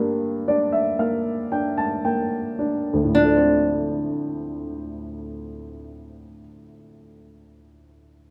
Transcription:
0, 0, Header, 1, 3, 480
1, 0, Start_track
1, 0, Key_signature, -1, "minor"
1, 0, Tempo, 1034483
1, 948, Tempo, 1100917
1, 1427, Time_signature, 4, 2, 24, 8
1, 3679, End_track
2, 0, Start_track
2, 0, Title_t, "Nylon-string guitar"
2, 0, Program_c, 0, 24
2, 0, Note_on_c, 0, 67, 56
2, 932, Note_off_c, 0, 67, 0
2, 1429, Note_on_c, 0, 62, 48
2, 2894, Note_off_c, 0, 62, 0
2, 3679, End_track
3, 0, Start_track
3, 0, Title_t, "Upright piano"
3, 0, Program_c, 1, 0
3, 0, Control_c, 1, 64, 127
3, 0, Note_on_c, 1, 43, 44
3, 0, Note_on_c, 1, 58, 43
3, 0, Note_on_c, 1, 62, 42
3, 215, Note_off_c, 1, 62, 0
3, 222, Note_on_c, 1, 62, 38
3, 223, Note_on_c, 1, 74, 47
3, 332, Note_off_c, 1, 74, 0
3, 336, Note_on_c, 1, 76, 45
3, 449, Note_off_c, 1, 76, 0
3, 452, Note_off_c, 1, 58, 0
3, 459, Note_on_c, 1, 58, 38
3, 460, Note_on_c, 1, 77, 48
3, 685, Note_off_c, 1, 77, 0
3, 698, Note_off_c, 1, 62, 0
3, 704, Note_on_c, 1, 79, 45
3, 705, Note_on_c, 1, 62, 35
3, 817, Note_off_c, 1, 79, 0
3, 824, Note_on_c, 1, 81, 47
3, 940, Note_off_c, 1, 81, 0
3, 943, Note_off_c, 1, 58, 0
3, 950, Note_on_c, 1, 58, 37
3, 950, Note_on_c, 1, 79, 45
3, 1179, Note_off_c, 1, 62, 0
3, 1185, Note_on_c, 1, 62, 38
3, 1336, Note_on_c, 1, 38, 35
3, 1382, Note_on_c, 1, 45, 30
3, 1409, Note_off_c, 1, 43, 0
3, 1410, Note_off_c, 1, 79, 0
3, 1413, Note_off_c, 1, 58, 0
3, 1419, Note_off_c, 1, 62, 0
3, 1427, Note_on_c, 1, 53, 30
3, 1432, Control_c, 1, 64, 0
3, 1474, Note_on_c, 1, 57, 30
3, 1506, Control_c, 1, 64, 127
3, 1522, Note_on_c, 1, 60, 39
3, 2801, Note_off_c, 1, 38, 0
3, 2847, Note_off_c, 1, 45, 0
3, 2892, Note_off_c, 1, 53, 0
3, 2938, Note_off_c, 1, 57, 0
3, 2987, Note_off_c, 1, 60, 0
3, 3679, End_track
0, 0, End_of_file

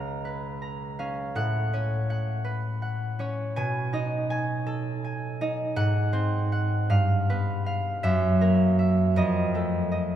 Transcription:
0, 0, Header, 1, 2, 480
1, 0, Start_track
1, 0, Tempo, 738007
1, 881, Time_signature, 6, 3, 24, 8
1, 4238, Tempo, 757576
1, 6546, End_track
2, 0, Start_track
2, 0, Title_t, "Harp"
2, 0, Program_c, 0, 46
2, 0, Note_on_c, 0, 37, 61
2, 0, Note_on_c, 0, 61, 51
2, 0, Note_on_c, 0, 71, 49
2, 0, Note_on_c, 0, 75, 50
2, 0, Note_on_c, 0, 77, 50
2, 0, Note_on_c, 0, 82, 51
2, 0, Note_on_c, 0, 85, 48
2, 154, Note_off_c, 0, 71, 0
2, 161, Note_on_c, 0, 71, 50
2, 393, Note_off_c, 0, 82, 0
2, 401, Note_on_c, 0, 82, 49
2, 635, Note_off_c, 0, 77, 0
2, 638, Note_off_c, 0, 61, 0
2, 643, Note_on_c, 0, 77, 57
2, 646, Note_on_c, 0, 61, 51
2, 880, Note_on_c, 0, 45, 62
2, 884, Note_on_c, 0, 78, 79
2, 897, Note_off_c, 0, 37, 0
2, 900, Note_off_c, 0, 75, 0
2, 900, Note_off_c, 0, 77, 0
2, 900, Note_off_c, 0, 82, 0
2, 1121, Note_off_c, 0, 61, 0
2, 1127, Note_on_c, 0, 61, 51
2, 1130, Note_on_c, 0, 73, 59
2, 1358, Note_off_c, 0, 78, 0
2, 1366, Note_on_c, 0, 78, 60
2, 1476, Note_off_c, 0, 85, 0
2, 1582, Note_off_c, 0, 71, 0
2, 1590, Note_on_c, 0, 71, 55
2, 1827, Note_off_c, 0, 78, 0
2, 1834, Note_on_c, 0, 78, 53
2, 2069, Note_off_c, 0, 61, 0
2, 2070, Note_off_c, 0, 73, 0
2, 2075, Note_on_c, 0, 61, 52
2, 2080, Note_on_c, 0, 73, 58
2, 2317, Note_on_c, 0, 80, 87
2, 2321, Note_on_c, 0, 47, 72
2, 2330, Note_off_c, 0, 45, 0
2, 2555, Note_on_c, 0, 63, 55
2, 2559, Note_on_c, 0, 75, 60
2, 2790, Note_off_c, 0, 80, 0
2, 2798, Note_on_c, 0, 80, 65
2, 3034, Note_on_c, 0, 69, 64
2, 3273, Note_off_c, 0, 80, 0
2, 3281, Note_on_c, 0, 80, 54
2, 3511, Note_off_c, 0, 63, 0
2, 3514, Note_off_c, 0, 75, 0
2, 3519, Note_on_c, 0, 63, 63
2, 3522, Note_on_c, 0, 75, 66
2, 3740, Note_off_c, 0, 78, 0
2, 3748, Note_on_c, 0, 44, 74
2, 3749, Note_on_c, 0, 78, 89
2, 3773, Note_off_c, 0, 69, 0
2, 3773, Note_off_c, 0, 71, 0
2, 3777, Note_off_c, 0, 61, 0
2, 3778, Note_off_c, 0, 73, 0
2, 3780, Note_off_c, 0, 47, 0
2, 3985, Note_on_c, 0, 60, 60
2, 3986, Note_on_c, 0, 72, 60
2, 4234, Note_off_c, 0, 78, 0
2, 4242, Note_on_c, 0, 78, 66
2, 4479, Note_on_c, 0, 43, 71
2, 4482, Note_on_c, 0, 77, 76
2, 4492, Note_off_c, 0, 60, 0
2, 4492, Note_off_c, 0, 72, 0
2, 4493, Note_off_c, 0, 44, 0
2, 4497, Note_off_c, 0, 63, 0
2, 4498, Note_off_c, 0, 75, 0
2, 4498, Note_off_c, 0, 80, 0
2, 4499, Note_off_c, 0, 78, 0
2, 4731, Note_on_c, 0, 59, 49
2, 4734, Note_on_c, 0, 71, 59
2, 4957, Note_off_c, 0, 77, 0
2, 4965, Note_on_c, 0, 77, 66
2, 5198, Note_on_c, 0, 76, 92
2, 5202, Note_on_c, 0, 42, 74
2, 5214, Note_off_c, 0, 43, 0
2, 5215, Note_off_c, 0, 77, 0
2, 5219, Note_off_c, 0, 59, 0
2, 5219, Note_off_c, 0, 71, 0
2, 5439, Note_on_c, 0, 70, 61
2, 5442, Note_on_c, 0, 58, 57
2, 5670, Note_off_c, 0, 76, 0
2, 5678, Note_on_c, 0, 76, 61
2, 5914, Note_on_c, 0, 41, 69
2, 5921, Note_on_c, 0, 75, 74
2, 5933, Note_off_c, 0, 76, 0
2, 5934, Note_off_c, 0, 70, 0
2, 5935, Note_off_c, 0, 42, 0
2, 5935, Note_off_c, 0, 58, 0
2, 6157, Note_on_c, 0, 57, 46
2, 6162, Note_on_c, 0, 69, 54
2, 6384, Note_off_c, 0, 75, 0
2, 6392, Note_on_c, 0, 75, 57
2, 6546, Note_off_c, 0, 41, 0
2, 6546, Note_off_c, 0, 57, 0
2, 6546, Note_off_c, 0, 69, 0
2, 6546, Note_off_c, 0, 75, 0
2, 6546, End_track
0, 0, End_of_file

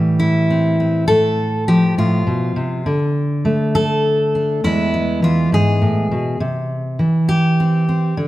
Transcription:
0, 0, Header, 1, 2, 480
1, 0, Start_track
1, 0, Tempo, 590609
1, 879, Time_signature, 6, 3, 24, 8
1, 6727, End_track
2, 0, Start_track
2, 0, Title_t, "Steel-string acoustic guitar"
2, 0, Program_c, 0, 25
2, 0, Note_on_c, 0, 45, 61
2, 0, Note_on_c, 0, 52, 56
2, 0, Note_on_c, 0, 55, 39
2, 158, Note_on_c, 0, 64, 74
2, 409, Note_on_c, 0, 60, 39
2, 640, Note_off_c, 0, 60, 0
2, 650, Note_on_c, 0, 60, 36
2, 856, Note_off_c, 0, 60, 0
2, 857, Note_off_c, 0, 52, 0
2, 871, Note_off_c, 0, 64, 0
2, 874, Note_on_c, 0, 69, 99
2, 877, Note_off_c, 0, 45, 0
2, 887, Note_off_c, 0, 55, 0
2, 887, Note_on_c, 0, 45, 64
2, 1357, Note_off_c, 0, 69, 0
2, 1365, Note_on_c, 0, 67, 84
2, 1369, Note_on_c, 0, 53, 55
2, 1598, Note_off_c, 0, 45, 0
2, 1602, Note_off_c, 0, 67, 0
2, 1608, Note_on_c, 0, 45, 58
2, 1613, Note_on_c, 0, 65, 75
2, 1840, Note_off_c, 0, 45, 0
2, 1843, Note_on_c, 0, 47, 54
2, 2079, Note_off_c, 0, 47, 0
2, 2082, Note_on_c, 0, 48, 51
2, 2295, Note_off_c, 0, 53, 0
2, 2320, Note_off_c, 0, 48, 0
2, 2324, Note_on_c, 0, 50, 64
2, 2326, Note_off_c, 0, 65, 0
2, 2803, Note_on_c, 0, 57, 54
2, 3047, Note_on_c, 0, 69, 92
2, 3535, Note_on_c, 0, 62, 40
2, 3732, Note_off_c, 0, 57, 0
2, 3738, Note_off_c, 0, 62, 0
2, 3761, Note_off_c, 0, 50, 0
2, 3763, Note_off_c, 0, 69, 0
2, 3770, Note_on_c, 0, 40, 63
2, 3773, Note_on_c, 0, 64, 88
2, 3777, Note_on_c, 0, 52, 44
2, 3783, Note_on_c, 0, 56, 45
2, 3785, Note_on_c, 0, 59, 45
2, 4004, Note_off_c, 0, 56, 0
2, 4013, Note_on_c, 0, 56, 42
2, 4242, Note_off_c, 0, 52, 0
2, 4245, Note_on_c, 0, 52, 54
2, 4246, Note_off_c, 0, 64, 0
2, 4258, Note_on_c, 0, 65, 78
2, 4484, Note_off_c, 0, 40, 0
2, 4488, Note_off_c, 0, 65, 0
2, 4488, Note_on_c, 0, 44, 52
2, 4501, Note_on_c, 0, 68, 76
2, 4724, Note_off_c, 0, 44, 0
2, 4727, Note_on_c, 0, 45, 55
2, 4963, Note_off_c, 0, 45, 0
2, 4969, Note_on_c, 0, 47, 51
2, 5173, Note_off_c, 0, 52, 0
2, 5177, Note_off_c, 0, 56, 0
2, 5201, Note_off_c, 0, 47, 0
2, 5204, Note_on_c, 0, 48, 68
2, 5210, Note_off_c, 0, 68, 0
2, 5212, Note_off_c, 0, 59, 0
2, 5681, Note_off_c, 0, 48, 0
2, 5682, Note_on_c, 0, 52, 57
2, 5921, Note_on_c, 0, 67, 87
2, 6177, Note_on_c, 0, 60, 40
2, 6399, Note_off_c, 0, 60, 0
2, 6409, Note_on_c, 0, 60, 35
2, 6612, Note_off_c, 0, 52, 0
2, 6615, Note_off_c, 0, 60, 0
2, 6640, Note_off_c, 0, 67, 0
2, 6642, Note_on_c, 0, 50, 64
2, 6727, Note_off_c, 0, 50, 0
2, 6727, End_track
0, 0, End_of_file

